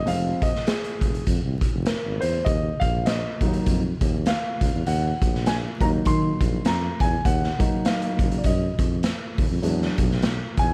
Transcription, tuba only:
0.06 0.31 F1 medium
1.01 1.19 F1 medium
1.27 1.39 F2 medium
1.44 1.57 C2 medium
1.74 1.96 F1 medium
2.05 2.17 G#1 medium
2.22 2.40 E2 medium
2.46 2.71 D#2 loud
2.81 3.24 A#1 medium
3.41 3.59 D#2 medium
3.67 3.92 F2 medium
4.01 4.32 D#2 medium
4.61 4.70 C#2 medium
4.74 4.83 E2 medium
4.86 5.11 D#2 loud
5.22 5.65 A#1 medium
5.81 5.99 D#2 medium
6.06 6.31 D#3 loud
6.41 6.59 A#1 medium
6.65 6.90 F2 medium
7.00 7.18 E2 medium
7.25 7.50 D#2 loud
8.19 8.37 F#1 medium
8.44 8.69 F#2 medium
8.78 9.09 F2 medium
9.38 9.47 D#2 medium
9.50 9.60 F2 medium
9.63 9.88 E2 loud
9.99 10.42 B1 medium
10.57 10.74 E2 medium

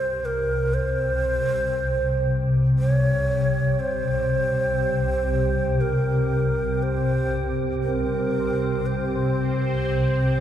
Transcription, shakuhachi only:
0.00 0.26 C5 loud
0.25 0.75 A#4 medium
0.74 2.51 C5 loud
2.79 2.91 C5 loud
2.91 3.81 C#5 loud
3.80 5.82 C5 loud
5.81 6.84 A#4 medium
6.83 7.59 C5 medium
7.83 8.88 A#4 medium
8.86 10.40 C5 medium

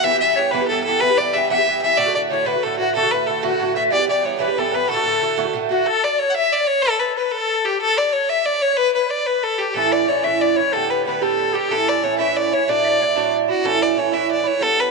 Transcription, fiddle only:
0.04 0.20 E5 loud
0.20 0.38 E5 medium
0.37 0.53 C#5 medium
0.51 0.67 B4 medium
0.68 0.83 A4 medium
0.84 1.02 A4 loud
1.00 1.19 B4 loud
1.17 1.35 D5 loud
1.33 1.49 E5 medium
1.49 1.80 E5 loud
1.82 1.99 E5 loud
1.97 2.14 D5 loud
2.15 2.22 D5 medium
2.30 2.48 C#5 medium
2.46 2.65 B4 medium
2.63 2.78 A4 medium
2.79 2.93 F#4 medium
2.95 3.13 A4 loud
3.11 3.28 B4 medium
3.27 3.44 A4 medium
3.43 3.75 F#4 medium
3.76 3.83 E5 medium
3.92 4.08 D5 loud
4.09 4.27 D5 medium
4.25 4.36 C#5 medium
4.36 4.60 B4 medium
4.36 4.41 C#5 medium
4.58 4.76 A4 medium
4.74 4.89 B4 loud
4.90 5.51 A4 loud
5.70 5.88 F#4 medium
5.86 6.05 A4 loud
6.04 6.20 D5 medium
6.19 6.32 C#5 medium
6.30 6.36 F#5 medium
6.34 6.54 E5 loud
6.53 6.68 D5 loud
6.67 6.84 C#5 loud
6.82 7.01 A4 loud
6.99 7.15 B4 medium
7.16 7.33 B4 medium
7.32 7.66 A4 medium
7.65 7.80 G4 medium
7.81 7.99 A4 loud
7.98 8.14 D5 loud
8.12 8.31 C#5 medium
8.29 8.47 E5 medium
8.46 8.63 D5 loud
8.62 8.78 C#5 loud
8.77 8.94 B4 loud
8.95 9.12 B4 medium
9.10 9.28 D5 medium
9.26 9.45 B4 medium
9.43 9.60 A4 medium
9.58 9.75 G4 medium
9.74 9.94 A4 loud
9.92 10.10 D5 medium
10.08 10.25 C#5 medium
10.24 10.43 E5 loud
10.41 10.58 D5 medium
10.56 10.75 C#5 medium
10.73 10.92 A4 loud
10.90 11.06 B4 medium
11.06 11.24 B4 medium
11.22 11.56 A4 medium
11.55 11.73 G4 medium
11.72 11.90 A4 loud
11.89 12.05 D5 medium
12.04 12.18 C#5 medium
12.19 12.38 E5 medium
12.36 12.55 D5 medium
12.53 12.71 C#5 medium
12.69 13.34 D5 loud
13.49 13.67 F#4 medium
13.66 13.84 A4 loud
13.82 14.00 D5 medium
13.98 14.15 C#5 medium
14.13 14.30 E5 medium
14.31 14.48 D5 medium
14.47 14.64 C#5 loud
14.63 14.81 A4 loud
14.80 14.91 B4 loud

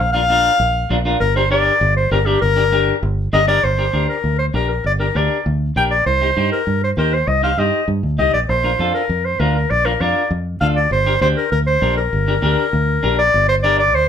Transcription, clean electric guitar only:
0.14 0.20 D4 medium
0.14 0.20 F4 medium
0.14 0.20 A#4 medium
0.30 0.51 D4 medium
0.30 0.51 F4 medium
0.30 0.51 A#4 medium
0.90 0.96 D4 medium
0.90 0.96 F4 medium
0.90 0.96 A#4 medium
1.05 1.16 D4 medium
1.05 1.16 F4 medium
1.05 1.16 A#4 medium
1.36 1.41 D4 medium
1.36 1.41 G4 medium
1.36 1.42 A#4 medium
1.51 1.72 D4 medium
1.51 1.72 G4 medium
1.51 1.72 A#4 medium
2.11 2.17 D4 medium
2.11 2.17 G4 medium
2.11 2.17 A#4 medium
2.26 2.37 D4 medium
2.26 2.37 G4 soft
2.26 2.38 A#4 medium
2.56 2.62 D4 medium
2.56 2.62 G4 medium
2.56 2.63 A#4 medium
2.72 2.93 D4 medium
2.72 2.94 G4 medium
2.72 2.94 A#4 medium
3.33 3.38 D4 medium
3.33 3.39 G4 medium
3.33 3.39 A#4 medium
3.48 3.59 D4 medium
3.48 3.59 G4 medium
3.48 3.59 A#4 medium
3.78 3.84 D4 medium
3.78 3.84 G4 medium
3.78 3.84 A#4 medium
3.93 4.15 D4 medium
3.93 4.15 G4 medium
3.93 4.15 A#4 medium
4.54 4.70 D4 medium
4.54 4.70 G4 medium
4.54 4.71 A#4 medium
5.00 5.05 D4 medium
5.00 5.05 G4 medium
5.00 5.05 A#4 medium
5.16 5.37 D4 medium
5.16 5.37 G4 medium
5.16 5.37 A#4 medium
5.76 5.92 D4 medium
5.76 5.92 G4 medium
5.76 5.93 A#4 medium
6.22 6.27 D#4 medium
6.22 6.27 G4 medium
6.22 6.27 C5 medium
6.36 6.58 D#4 medium
6.36 6.58 G4 medium
6.36 6.58 C5 medium
6.98 7.13 D#4 medium
6.98 7.14 G4 medium
6.98 7.14 C5 medium
7.43 7.48 D#4 medium
7.43 7.49 G4 soft
7.43 7.49 C5 medium
7.58 7.80 D#4 medium
7.58 7.80 G4 medium
7.58 7.80 C5 medium
8.18 8.35 D#4 medium
8.18 8.35 G4 medium
8.18 8.35 D#5 medium
8.64 8.69 D4 medium
8.64 8.70 F4 soft
8.64 8.70 A#4 medium
8.79 9.01 D4 medium
8.79 9.01 F4 medium
8.79 9.01 A4 medium
9.40 9.56 D4 medium
9.40 9.56 F4 medium
9.40 9.56 A#4 medium
9.85 9.91 D4 medium
9.85 9.91 F4 medium
9.85 9.91 A#4 medium
10.01 10.22 D4 medium
10.01 10.22 F4 medium
10.01 10.23 A#4 medium
10.61 10.77 D4 medium
10.61 10.78 F4 medium
10.61 10.78 A4 medium
11.06 11.12 D4 medium
11.06 11.12 G4 medium
11.06 11.12 A#4 medium
11.21 11.43 D4 medium
11.21 11.43 G4 medium
11.21 11.44 C5 medium
11.82 11.98 D4 medium
11.82 11.98 G4 medium
11.82 11.99 A#4 medium
12.28 12.33 D4 medium
12.28 12.33 G4 medium
12.28 12.34 A#4 medium
12.42 12.64 D4 medium
12.42 12.64 G4 medium
12.42 12.64 A#4 medium
13.03 13.19 D4 medium
13.03 13.19 G4 medium
13.03 13.20 A#4 medium
13.64 13.80 D4 medium
13.64 13.80 G4 medium
13.64 13.80 A#4 medium

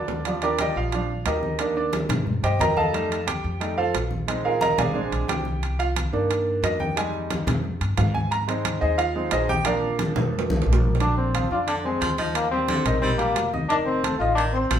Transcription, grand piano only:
0.00 0.20 D3 medium
0.00 0.21 D4 medium
0.00 0.21 D5 medium
0.26 0.92 F3 medium
0.26 0.92 G3 soft
0.26 0.41 D5 medium
0.43 0.59 D4 medium
0.43 0.59 G4 medium
0.43 0.59 A#4 medium
0.43 0.59 D5 medium
0.60 0.76 G4 medium
0.60 0.77 D5 medium
0.60 0.76 D#5 medium
0.60 0.76 G5 medium
0.77 1.23 F4 medium
0.77 1.23 F5 medium
0.93 1.08 F3 soft
0.93 1.08 G3 soft
0.93 1.09 D4 soft
1.26 1.73 D#4 soft
1.26 1.74 G4 medium
1.26 1.74 A#4 medium
1.26 1.73 D#5 medium
1.59 2.08 D#3 medium
1.59 2.08 A#3 soft
1.59 1.75 D4 medium
1.77 1.93 D4 medium
1.77 1.93 D5 medium
2.43 2.60 G4 medium
2.43 2.60 C5 medium
2.43 2.59 D#5 medium
2.43 2.59 G5 medium
2.60 2.77 A#4 medium
2.60 2.76 D#5 medium
2.60 2.77 G5 medium
2.60 2.77 A#5 medium
2.77 3.24 A4 medium
2.77 3.24 D#5 medium
2.77 3.24 F5 medium
2.77 3.24 A5 medium
2.93 3.16 G3 medium
2.93 3.16 A3 medium
2.93 3.17 D#4 medium
3.27 3.75 G4 medium
3.27 3.74 G5 medium
3.60 3.76 G3 soft
3.60 3.76 A3 soft
3.60 3.76 D#4 medium
3.78 3.94 F4 medium
3.78 3.94 A4 medium
3.78 3.94 C5 medium
3.78 3.94 F5 medium
4.28 4.50 G#3 medium
4.28 4.51 C4 soft
4.28 4.51 D#4 medium
4.45 4.62 F4 medium
4.45 4.62 G#4 medium
4.45 4.61 A#4 medium
4.45 4.60 F5 medium
4.61 4.78 A#4 medium
4.61 4.78 D#5 medium
4.61 4.78 F5 medium
4.61 4.78 A#5 medium
4.78 5.26 G#4 medium
4.78 5.26 D5 medium
4.78 5.26 F5 medium
4.78 5.26 G#5 medium
4.94 5.42 G#3 medium
4.94 5.43 C4 soft
4.94 5.43 D4 medium
5.28 5.76 G4 medium
5.28 5.76 G5 medium
5.79 5.90 F4 medium
5.79 5.89 F5 medium
6.12 6.93 D#3 medium
6.12 6.93 A#3 soft
6.12 6.93 D4 medium
6.64 6.80 D#5 medium
6.80 6.97 G5 medium
6.96 7.44 G3 medium
6.96 7.45 G#3 soft
6.96 7.45 D#4 medium
6.96 7.13 G#5 loud
7.97 8.14 F5 medium
8.14 8.31 G#5 medium
8.31 8.41 A#5 medium
8.48 8.96 G#3 medium
8.48 8.96 C4 medium
8.48 8.80 D#4 medium
8.81 8.98 D#4 medium
8.81 8.98 G#4 medium
8.81 8.98 C5 medium
8.81 8.98 D#5 medium
8.98 9.30 F4 medium
8.98 9.30 F5 medium
9.15 9.31 G#3 soft
9.15 9.31 C4 soft
9.15 9.31 D#4 medium
9.32 9.49 D#4 medium
9.32 9.49 G#4 medium
9.32 9.49 C5 medium
9.32 9.49 D#5 medium
9.49 9.66 G4 medium
9.49 9.66 G5 loud
9.65 10.96 F3 medium
9.65 10.96 A#3 soft
9.65 10.97 D4 medium
9.65 9.97 F4 medium
9.65 9.97 A#4 medium
9.65 9.97 D5 medium
9.65 9.97 F5 medium
11.01 11.28 D3 medium
11.01 11.28 D4 medium
11.01 11.29 D5 medium
11.35 11.48 F3 medium
11.35 11.48 F4 medium
11.35 11.49 F5 medium
11.52 11.79 D4 medium
11.52 11.79 D5 medium
11.52 11.80 D6 medium
11.85 12.13 G#3 medium
11.85 12.13 G#4 medium
11.85 12.13 G#5 medium
12.18 12.46 D#4 medium
12.18 12.46 D#5 medium
12.18 12.46 D#6 medium
12.52 12.80 G3 medium
12.52 12.80 G4 medium
12.52 12.80 G5 medium
12.86 13.14 D#3 medium
12.86 13.14 D#4 medium
12.86 13.14 D#5 medium
13.20 13.47 G3 medium
13.20 13.47 G4 medium
13.20 13.48 G5 medium
13.53 13.67 D#4 medium
13.53 13.67 D#5 medium
13.53 13.67 D#6 medium
13.70 13.98 D#3 medium
13.70 13.98 D#4 medium
13.70 13.98 D#5 medium
14.04 14.17 A3 medium
14.04 14.18 A4 medium
14.04 14.18 A5 medium
14.21 14.48 D#4 medium
14.21 14.48 D#5 medium
14.21 14.49 D#6 medium
14.55 14.79 C4 medium
14.55 14.79 C5 medium
14.55 14.79 C6 medium

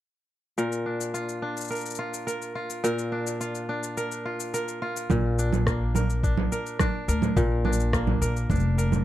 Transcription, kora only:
0.58 2.82 A#2 medium
0.58 1.70 A#4 medium
0.86 1.42 D4 soft
1.14 1.98 F4 medium
1.42 3.11 D4 soft
1.70 2.26 A#4 medium
1.99 2.55 F4 medium
2.27 2.84 A#4 medium
2.55 3.40 F4 medium
2.84 5.09 A#2 medium
2.84 3.97 A#4 medium
3.12 3.69 D4 medium
3.41 4.25 F4 medium
3.69 5.37 D4 medium
3.97 4.53 A#4 medium
4.25 4.82 F4 medium
4.54 5.81 A#4 medium
4.82 6.33 F4 medium
5.10 7.35 A#2 medium
5.39 6.23 D4 medium
5.67 7.92 A#3 medium
5.95 6.52 A#4 medium
6.24 6.80 D4 medium
6.52 7.08 A#4 medium
6.80 7.65 D4 medium
7.08 8.21 A#4 medium
7.37 9.04 A#2 medium
7.65 8.50 D4 medium
7.93 9.04 A#3 medium
8.22 8.78 A#4 medium
8.50 9.04 D4 medium
8.78 9.04 A#4 medium

